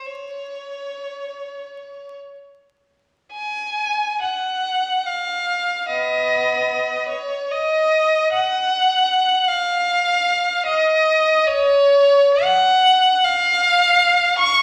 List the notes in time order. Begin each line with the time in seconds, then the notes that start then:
0.06 C#5
3.32 G#5
4.21 F#5
5.06 F5
5.88 B3 D#5
7.08 C#5
7.51 D#5
8.32 F#5
9.48 F5
10.66 D#5
11.47 C#5
12.44 F#5
13.24 F5
14.38 C#6